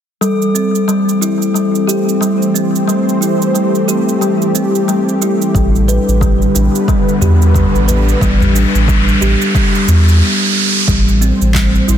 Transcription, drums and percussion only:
0.22 cabasa
0.42 cabasa
0.56 cabasa
0.75 cabasa
0.89 cabasa
1.09 cabasa
1.22 cabasa
1.42 cabasa
1.56 cabasa
1.75 cabasa
1.89 cabasa
2.09 cabasa
2.22 cabasa
2.42 cabasa
2.56 cabasa
2.76 cabasa
2.89 cabasa
3.09 cabasa
3.22 cabasa
3.42 cabasa
3.55 cabasa
3.75 cabasa
3.89 cabasa
4.09 cabasa
4.22 cabasa
4.42 cabasa
4.55 cabasa
4.75 cabasa
4.89 cabasa
5.09 cabasa
5.22 cabasa
5.42 cabasa
5.55 kick, cabasa
5.75 cabasa
5.89 cabasa
6.09 cabasa
6.21 kick, cabasa
6.42 cabasa
6.56 cabasa
6.75 cabasa
6.88 kick, cabasa
7.09 cabasa
7.21 udu, cabasa
7.42 cabasa
7.55 kick, cabasa
7.75 cabasa
7.88 udu, cabasa
8.09 cabasa
8.21 kick, cabasa
8.41 udu, cabasa
8.56 cabasa
8.75 cabasa
8.88 kick, cabasa
9.09 cabasa
9.22 cabasa
9.42 cabasa
9.55 kick, cabasa
9.75 cabasa
9.87 udu, cabasa
10.09 cabasa
10.88 kick, cabasa
11.08 cabasa
11.22 cabasa
11.42 cabasa
11.54 kick, clap, cabasa
11.75 cabasa
11.89 cabasa

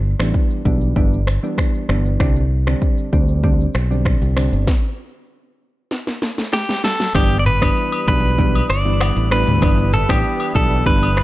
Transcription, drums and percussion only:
0.20 finger snap, cross-stick, shaker
0.34 kick, shaker
0.50 shaker
0.65 kick, shaker
0.81 shaker
0.96 kick, shaker
1.13 shaker
1.26 finger snap, cross-stick, shaker
1.44 shaker
1.58 finger snap, kick, cross-stick, shaker
1.74 shaker
1.89 finger snap, cross-stick, shaker
2.06 shaker
2.20 finger snap, kick, cross-stick, shaker
2.36 shaker
2.67 finger snap, cross-stick, shaker
2.82 kick, shaker
2.98 shaker
3.13 kick, shaker
3.28 shaker
3.44 kick, shaker
3.61 shaker
3.74 finger snap, cross-stick, shaker
3.92 shaker
4.05 finger snap, kick, cross-stick, shaker
4.22 shaker
4.37 finger snap, cross-stick, shaker
4.53 shaker
4.67 kick, snare
5.91 snare
6.07 snare
6.22 snare
6.38 snare
6.53 snare
6.69 snare
6.84 snare
7.00 snare
7.15 finger snap, kick, cross-stick, high agogo, shaker
7.31 shaker
7.46 mid tom
7.62 finger snap, kick, cross-stick, high agogo, shaker
7.77 shaker
7.92 high agogo, shaker
8.08 kick, shaker
8.23 shaker
8.38 kick, shaker
8.55 high agogo, shaker
8.69 finger snap, cross-stick, shaker
8.86 shaker
9.00 finger snap, cross-stick, high agogo, low woodblock, shaker
9.17 shaker
9.31 finger snap, cross-stick, open hi-hat
9.47 mid tom, shaker
9.62 finger snap, kick, cross-stick, high agogo, shaker
9.78 shaker
9.93 mid tom
10.09 finger snap, kick, cross-stick, high agogo, shaker
10.24 shaker
10.40 high agogo, shaker
10.55 kick, shaker
10.71 shaker
10.86 kick, shaker
11.03 high agogo, shaker
11.16 finger snap, cross-stick, shaker

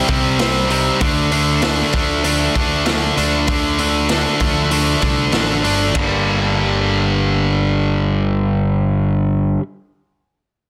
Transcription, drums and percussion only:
0.08 kick, open hi-hat
0.39 snare, open hi-hat
0.70 open hi-hat
1.01 kick, open hi-hat
1.32 open hi-hat
1.62 snare, open hi-hat
1.93 kick, open hi-hat
2.24 open hi-hat
2.55 kick, open hi-hat
2.86 snare, open hi-hat
3.18 open hi-hat
3.48 kick, open hi-hat
3.79 open hi-hat
4.09 snare, open hi-hat
4.40 kick, open hi-hat
4.71 open hi-hat
5.02 kick, open hi-hat
5.32 snare, open hi-hat
5.65 open hi-hat
5.95 kick, crash

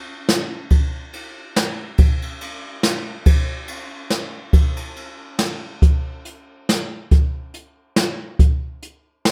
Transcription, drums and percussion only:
0.29 snare, ride
0.70 kick, ride
1.13 ride
1.56 snare, ride
1.98 kick, ride
2.22 ride
2.41 ride
2.83 snare, ride
3.26 kick, ride
3.68 ride
4.10 snare, ride
4.53 kick, ride
4.77 ride
4.96 ride
5.39 snare, ride
5.82 kick, closed hi-hat
6.25 closed hi-hat
6.69 snare, closed hi-hat
7.11 kick, closed hi-hat
7.54 closed hi-hat
7.96 snare, closed hi-hat
8.39 kick, closed hi-hat
8.82 closed hi-hat
9.25 snare, closed hi-hat

